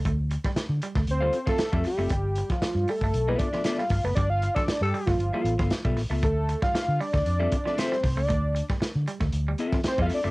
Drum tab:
HH |x-x-x-x-x-x-x-o-|x-x-x-o-x-x-x-o-|x-x-x-o-x-x-x-o-|x-x-x-o-x-x-x-o-|
SD |---oo--o---oo-o-|---oo------oooo-|---oo--o---oo-o-|---oo--o---oooo-|
BD |o--o---o---o-o--|o--o---o--o---o-|o--o---o---o-o--|o--o---o--o---o-|

HH |x-x-x-x-x-x-x-o-|
SD |---oo--o---oo-o-|
BD |o--o---o---o-o--|